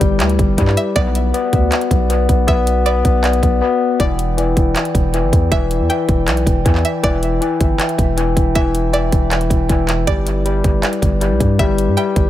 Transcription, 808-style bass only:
0.01 0.22 G1 loud
0.20 0.38 D2 loud
0.39 0.57 G1 loud
0.58 0.76 G2 loud
0.96 1.32 B1 loud
1.53 1.71 D2 loud
1.91 2.27 B1 loud
2.29 2.47 B1 loud
2.48 3.03 B1 loud
3.05 3.41 B1 loud
3.43 3.61 B1 loud
4.00 4.54 E1 loud
4.57 4.75 E1 loud
4.95 5.25 E1 loud
5.23 5.32 G1 loud
5.33 5.51 E2 loud
5.52 5.82 E1 loud
5.80 5.89 E2 loud
6.09 6.29 E1 loud
6.28 6.46 B1 loud
6.47 6.65 E1 loud
6.66 6.84 E2 loud
7.04 7.40 E1 loud
7.61 7.79 G1 loud
7.98 8.35 E1 loud
8.37 8.55 E1 loud
8.55 9.10 E1 loud
9.12 9.49 E1 loud
9.50 9.69 E1 loud
9.69 10.06 E1 loud
10.07 10.62 G1 loud
10.64 10.83 G1 loud
11.02 11.32 G1 loud
11.31 11.40 B1 loud
11.40 11.59 G2 loud
11.59 11.89 G1 loud
11.88 11.97 G2 loud
12.16 12.30 G1 loud

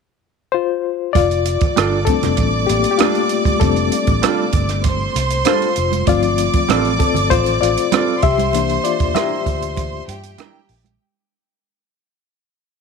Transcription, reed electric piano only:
0.52 1.12 F4 medium
0.52 1.11 C5 medium
1.13 2.04 F4 medium
1.13 2.09 D5 loud
2.05 2.96 G3 soft
2.05 2.96 A3 soft
2.05 2.66 C4 medium
2.05 2.96 D4 soft
2.05 2.64 A4 medium
2.67 2.92 A#3 medium
2.67 2.90 G4 medium
2.91 2.99 G4 medium
2.98 3.58 A3 medium
2.98 3.62 F4 medium
3.60 3.89 G3 medium
3.60 3.89 A3 soft
3.60 4.20 C4 medium
3.60 4.03 D4 medium
3.60 4.18 A4 medium
5.46 6.04 F4 medium
5.46 6.09 C5 medium
6.07 6.96 F3 medium
6.07 6.96 A3 soft
6.07 6.96 C4 medium
6.07 6.97 F4 medium
6.07 7.03 D5 medium
6.99 7.14 C4 medium
6.99 7.13 A4 medium
7.30 7.60 F4 medium
7.30 7.62 C5 loud
7.61 8.19 F4 medium
7.61 8.25 D5 medium
8.23 8.81 G4 medium
8.23 8.86 E5 medium
8.53 8.95 E3 medium
8.53 8.95 A#3 soft
8.53 8.95 D4 medium
8.84 9.14 F4 medium
8.84 9.16 D5 medium
9.15 10.66 G4 medium
9.15 10.65 E5 medium

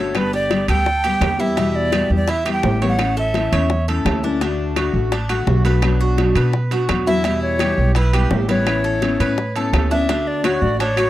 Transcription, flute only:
0.00 0.18 C#5 medium
0.16 0.33 B4 medium
0.35 0.67 D5 medium
0.69 1.42 G5 loud
1.40 1.77 E5 medium
1.76 2.11 D5 loud
2.17 2.31 D5 medium
2.30 2.53 E5 medium
2.53 2.86 G5 medium
2.89 3.16 F#5 medium
3.19 3.85 E5 medium
7.07 7.40 E5 loud
7.42 7.92 C#5 loud
7.97 8.29 B4 medium
8.50 9.70 C#5 medium
9.91 10.29 E5 medium
10.27 10.47 D5 medium
10.45 10.64 C#5 medium
10.62 10.79 D5 medium
10.80 11.10 C#5 medium

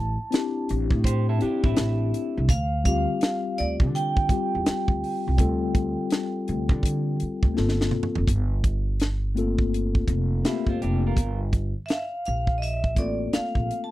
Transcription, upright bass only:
0.00 0.16 A1 loud
0.70 0.90 A1 medium
0.92 1.37 A2 loud
1.42 muted upright bass stroke soft
1.65 1.76 A1 medium
1.78 2.11 A1 medium
2.37 2.49 C2 medium
2.50 3.05 D2 loud
3.60 3.83 D2 medium
3.81 4.26 D3 loud
4.30 muted upright bass stroke soft
4.55 4.66 E2 medium
4.68 muted upright bass stroke soft
4.89 5.01 D2 medium
5.28 5.38 C2 medium
5.40 5.94 D2 loud
6.49 6.69 D2 medium
6.70 7.15 D3 loud
7.22 muted upright bass stroke soft
7.44 7.55 D2 medium
7.58 7.90 G1 medium
8.18 8.28 F1 medium
8.29 10.05 G1 medium
10.09 10.41 F1 medium
10.68 10.79 G1 medium
10.83 11.15 F1 medium
11.18 11.72 G1 medium
12.28 12.98 A#1 medium
12.98 13.30 A1 medium
13.36 muted upright bass stroke soft
13.57 13.68 A#1 medium

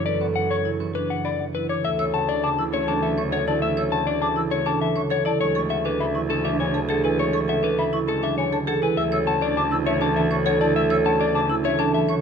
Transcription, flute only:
0.21 0.27 F#5 medium
0.50 0.56 C#6 medium
1.25 1.31 B5 medium
1.40 1.46 F#5 medium
1.69 1.75 D6 medium
1.84 1.90 E6 medium
1.99 2.05 E6 medium
2.13 2.19 F#5 medium
2.43 2.49 D6 medium
2.58 2.64 E6 medium
3.03 3.09 A5 medium
3.17 3.23 C#6 medium
3.32 3.38 F#5 medium
3.47 3.53 A5 medium
3.62 3.68 E6 medium
3.77 3.83 E6 medium
3.92 3.98 F#5 medium
4.22 4.28 D6 medium
4.37 4.43 E6 medium
4.81 4.87 A5 medium
4.96 5.02 C#6 medium
5.11 5.17 F#5 medium
5.26 5.32 A5 medium
5.41 5.47 C#6 medium
5.55 5.61 C#6 medium
5.70 5.76 F#5 medium
6.00 6.06 B5 medium
6.15 6.21 C#6 medium
6.60 6.66 G#5 medium
6.74 6.80 A5 medium
6.89 6.95 F#5 medium
7.04 7.10 G#5 medium
7.19 7.25 C#6 medium
7.34 7.40 C#6 medium
7.49 7.55 F#5 medium
7.78 7.84 B5 medium
7.93 7.99 C#6 medium
8.38 8.44 G#5 medium
8.53 8.59 A5 medium
8.67 8.73 F#5 medium
8.82 8.88 G#5 medium
8.97 9.03 E6 medium
9.12 9.18 E6 medium
9.27 9.33 F#5 medium
9.57 9.63 D6 medium
9.71 9.77 E6 medium
9.86 9.92 E5 medium
10.16 10.22 A5 medium
10.31 10.37 C#6 medium
10.45 10.51 F#5 loud
10.60 10.66 A5 medium
10.75 10.81 E6 medium
10.90 10.96 E6 loud
11.05 11.11 F#5 medium
11.35 11.41 D6 medium
11.49 11.55 E6 medium
11.64 11.70 E5 medium
11.94 12.00 A5 medium
12.09 12.15 C#6 medium

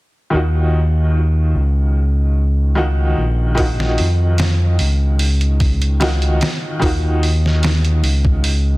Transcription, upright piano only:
0.30 2.70 D#3 medium
0.30 2.71 D#4 medium
0.30 2.72 F4 medium
0.35 2.73 F#4 medium
2.75 3.52 D#3 medium
2.75 3.53 D#4 medium
2.75 3.53 F4 medium
2.75 3.54 F#4 loud
3.55 5.95 D#3 medium
3.55 5.96 D#4 medium
3.55 5.96 F4 medium
3.60 5.97 F#4 loud
6.00 6.77 D#3 medium
6.00 6.77 D#4 medium
6.00 6.78 F4 medium
6.00 6.78 F#4 loud
6.79 8.78 D#3 medium
6.79 8.78 D#4 medium
6.79 8.78 F4 medium
6.84 8.78 F#4 loud

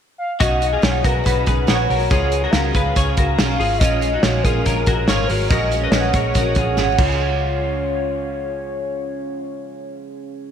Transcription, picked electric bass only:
0.41 0.76 B1 medium
0.83 1.01 B1 loud
1.05 1.22 B1 medium
1.26 1.43 B1 loud
1.47 1.65 B1 loud
1.69 1.86 A#1 medium
1.90 2.07 B1 medium
2.11 2.46 C#2 medium
2.54 2.71 C#2 loud
2.75 2.92 C#2 medium
2.96 3.14 C#2 medium
3.18 3.35 C#2 loud
3.39 3.56 B1 medium
3.60 3.81 G#1 medium
3.81 4.16 A#1 loud
4.23 4.41 A#1 loud
4.44 4.62 A#1 medium
4.66 4.83 A#1 loud
4.87 5.05 A#1 loud
5.08 5.26 G#1 loud
5.30 5.47 G#1 medium
5.51 5.85 A#1 medium
5.92 6.10 A#1 loud
6.14 6.32 A#1 medium
6.35 6.53 A#1 medium
6.57 6.74 A#1 loud
6.77 6.95 G#1 medium
6.99 10.52 C#2 loud

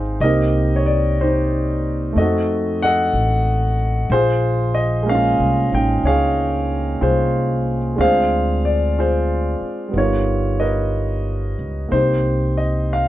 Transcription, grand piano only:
0.00 0.21 G#3 soft
0.00 0.21 C4 soft
0.00 0.19 D#4 medium
0.00 0.23 F4 soft
0.00 0.23 G#4 medium
0.00 0.23 C5 medium
0.00 0.23 F5 medium
0.21 2.17 A#3 soft
0.21 2.14 C4 soft
0.21 1.21 D#4 soft
0.21 1.21 G4 soft
0.21 2.13 A#4 soft
0.21 0.73 D#5 medium
0.76 0.85 C#5 medium
0.86 1.20 D5 medium
1.21 2.14 D#4 soft
1.21 2.14 G4 soft
1.21 2.13 C5 medium
2.13 4.08 A3 soft
2.13 4.10 C4 soft
2.18 4.12 D#4 soft
2.18 4.08 F#4 soft
2.18 2.83 A4 soft
2.18 2.76 D#5 medium
2.83 4.08 A4 medium
2.83 4.08 D#5 medium
2.83 3.74 F#5 medium
4.12 5.13 F4 medium
4.12 6.01 G#4 medium
4.12 4.71 C5 medium
4.75 5.09 D#5 medium
5.03 7.94 G#3 soft
5.03 7.97 A#3 soft
5.09 5.70 C#4 soft
5.09 5.74 F5 medium
5.15 5.73 F4 medium
5.71 7.97 C#4 soft
5.71 7.98 D#4 soft
5.71 7.00 F4 soft
5.71 6.07 G5 medium
6.05 7.00 G#4 medium
6.05 7.94 C#5 medium
6.05 7.05 F5 medium
7.01 7.94 F4 medium
7.01 7.94 G#4 soft
7.01 7.78 C5 medium
7.96 9.93 G#3 soft
7.96 9.94 C4 soft
7.96 9.93 D4 soft
7.96 8.97 F4 soft
8.01 8.98 G#4 medium
8.01 8.99 C5 medium
8.01 8.65 F5 medium
8.65 8.98 D5 medium
8.99 9.91 F4 soft
8.99 9.92 G#4 soft
8.99 9.99 C5 medium
9.88 11.90 G3 soft
9.88 11.91 B3 soft
9.96 11.91 D#4 soft
9.96 11.90 F4 soft
9.96 10.60 A#4 soft
9.96 10.63 C#5 medium
10.60 11.90 A#4 soft
10.60 11.89 B4 soft
10.60 11.55 D#5 medium
11.89 13.08 A#3 soft
11.89 13.08 C4 soft
11.89 12.59 C5 medium
11.93 13.08 D#4 soft
11.93 13.08 G4 soft
12.57 12.89 D#5 medium
12.93 13.08 F5 medium

